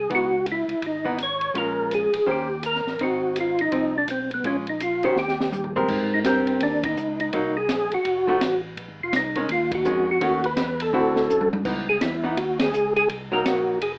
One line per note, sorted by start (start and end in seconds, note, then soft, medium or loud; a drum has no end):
0.00 0.10 G#4 medium
0.09 0.64 C#2 medium
0.09 0.30 E3 medium
0.09 0.30 B3 medium
0.09 0.31 D#4 medium
0.09 kick soft
0.09 ride soft
0.15 0.46 F#4 medium
0.46 hi-hat pedal soft
0.46 ride medium
0.52 0.86 E4 medium
0.68 0.75 C#2 soft
0.68 ride soft
0.81 1.51 G#1 medium
0.81 kick soft
0.81 ride medium
0.86 1.18 D#4 medium
1.05 1.17 E3 medium
1.05 1.17 B3 medium
1.05 1.17 D#4 medium
1.18 hi-hat pedal soft
1.18 ride medium
1.23 1.58 C#5 medium
1.41 ride soft
1.54 2.09 A#1 medium
1.54 2.09 G#3 soft
1.54 2.09 C#4 medium
1.54 2.10 F4 medium
1.54 1.93 A#4 medium
1.54 kick soft
1.54 ride soft
1.91 2.30 G#4 medium
1.91 hi-hat pedal soft
1.91 ride medium
2.13 2.20 A#1 soft
2.13 ride medium
2.26 2.82 D#2 medium
2.26 2.47 D#3 soft
2.26 2.47 C#4 soft
2.26 2.47 G4 medium
2.26 2.48 C5 medium
2.26 kick soft
2.31 2.63 G4 medium
2.63 3.02 A#4 medium
2.63 hi-hat pedal medium
2.63 ride medium
2.75 snare soft
2.85 2.98 A1 medium
2.85 snare soft
2.99 3.68 G#1 medium
2.99 3.55 C4 soft
2.99 3.55 D#4 medium
2.99 kick soft
2.99 ride soft
3.03 3.39 F#4 medium
3.36 hi-hat pedal soft
3.36 ride medium
3.40 3.61 F4 medium
3.59 3.97 D#4 medium
3.59 ride soft
3.72 4.05 C2 medium
3.72 3.92 F3 soft
3.72 3.93 C4 medium
3.72 3.93 D#4 soft
3.72 kick soft
3.72 ride medium
3.98 4.09 D4 medium
4.07 4.41 B1 medium
4.07 4.30 C4 medium
4.07 hi-hat pedal soft
4.07 ride medium
4.31 4.45 B3 medium
4.31 ride soft
4.44 5.13 A#1 medium
4.44 4.65 G#3 soft
4.44 4.65 C#4 soft
4.44 4.56 C#4 medium
4.44 4.65 F4 medium
4.44 kick soft
4.44 ride soft
4.67 4.82 D#4 medium
4.67 ride soft
4.80 5.05 F4 medium
4.80 hi-hat pedal soft
4.80 ride medium
5.03 5.16 D#3 medium
5.03 5.16 C#4 medium
5.03 5.18 F#4 medium
5.03 5.16 G4 medium
5.03 5.16 C5 medium
5.03 ride soft
5.15 5.85 D#2 medium
5.15 5.72 G4 medium
5.15 snare soft
5.28 snare soft
5.40 snare medium
5.52 hi-hat pedal medium
5.52 high tom soft
5.64 floor tom medium
5.76 6.23 G#3 medium
5.76 6.23 C4 medium
5.76 6.23 G4 medium
5.76 6.23 A#4 medium
5.76 floor tom medium
5.88 6.24 G#2 medium
5.88 kick medium
5.88 crash medium
6.14 6.19 D#4 medium
6.24 6.60 G2 medium
6.24 6.79 C4 medium
6.24 6.63 C4 medium
6.24 6.79 G4 medium
6.24 6.80 A#4 medium
6.24 kick soft
6.24 snare medium
6.24 hi-hat pedal medium
6.24 ride medium
6.47 ride soft
6.60 6.96 D#2 medium
6.60 6.85 D4 medium
6.60 kick soft
6.60 ride medium
6.83 7.19 D#4 medium
6.83 kick medium
6.83 ride medium
6.96 7.31 C#2 medium
6.96 hi-hat pedal medium
7.20 7.57 D#4 medium
7.20 ride soft
7.33 7.68 C2 medium
7.33 7.54 F#3 medium
7.33 7.54 A#3 medium
7.33 7.54 D#4 medium
7.33 kick soft
7.33 ride medium
7.57 7.93 G#4 loud
7.68 7.90 A#1 medium
7.68 kick soft
7.68 snare medium
7.68 hi-hat pedal medium
7.68 ride medium
7.91 7.98 A#1 soft
7.91 8.61 F#4 medium
7.91 ride soft
8.05 8.40 F1 medium
8.05 kick soft
8.05 ride medium
8.27 8.40 F3 medium
8.27 8.40 A3 medium
8.27 8.40 D#4 medium
8.27 8.40 F#4 medium
8.41 8.76 A1 medium
8.41 kick soft
8.41 snare medium
8.41 hi-hat pedal medium
8.41 ride medium
8.77 8.89 A#1 medium
8.77 kick soft
8.77 ride medium
8.88 9.01 G#1 medium
9.00 9.12 F1 medium
9.00 9.14 F4 medium
9.12 9.48 C2 medium
9.12 kick soft
9.12 snare medium
9.12 hi-hat pedal medium
9.12 ride medium
9.16 9.48 D#4 medium
9.35 9.48 D#3 medium
9.35 9.49 G#3 medium
9.35 9.49 C#4 medium
9.35 ride soft
9.49 9.84 D#2 medium
9.49 9.71 F4 medium
9.49 kick soft
9.49 ride medium
9.71 10.10 F#4 medium
9.71 kick medium
9.71 ride medium
9.84 10.20 F2 medium
9.84 10.06 D#3 medium
9.84 10.06 G#3 medium
9.84 10.06 C#4 medium
9.84 hi-hat pedal medium
10.11 10.47 F#4 medium
10.21 10.56 D#2 medium
10.21 10.41 D#3 medium
10.21 10.42 A3 medium
10.21 10.42 C#4 medium
10.21 10.42 F#4 medium
10.21 kick soft
10.21 ride medium
10.44 10.82 B4 loud
10.44 ride soft
10.57 10.92 E2 medium
10.57 kick soft
10.57 snare medium
10.57 hi-hat pedal medium
10.57 ride medium
10.80 11.49 A4 loud
10.80 ride medium
10.93 11.28 D2 medium
10.93 11.47 D3 soft
10.93 11.47 C4 soft
10.93 11.47 E4 medium
10.93 11.48 F#4 medium
10.93 kick soft
11.16 snare medium
11.29 11.64 F#2 medium
11.29 hi-hat pedal medium
11.41 high tom soft
11.53 high tom medium
11.65 12.00 C#2 medium
11.65 11.85 E3 medium
11.65 11.85 B3 medium
11.65 11.86 D#4 medium
11.65 kick medium
11.65 crash medium
11.89 12.01 G#4 medium
12.01 12.36 E2 medium
12.01 12.38 E4 medium
12.01 kick soft
12.01 snare medium
12.01 hi-hat pedal medium
12.01 ride medium
12.24 12.36 E3 medium
12.24 12.36 B3 medium
12.24 12.36 D#4 medium
12.36 12.71 D#2 medium
12.36 12.58 F#4 medium
12.36 kick soft
12.36 ride medium
12.59 12.93 G#4 medium
12.59 snare medium
12.59 ride medium
12.72 13.07 C#2 medium
12.72 hi-hat pedal medium
12.96 13.08 G#4 medium
12.96 ride soft
13.09 13.44 C2 medium
13.09 kick soft
13.09 ride medium
13.32 13.78 F#3 medium
13.32 13.79 A#3 medium
13.32 13.79 D#4 medium
13.32 13.45 A#4 loud
13.45 13.79 A#1 medium
13.45 13.79 F#4 medium
13.45 kick soft
13.45 snare medium
13.45 hi-hat pedal medium
13.45 ride medium
13.81 13.98 F1 medium
13.81 13.92 G#4 medium
13.81 kick soft
13.81 ride medium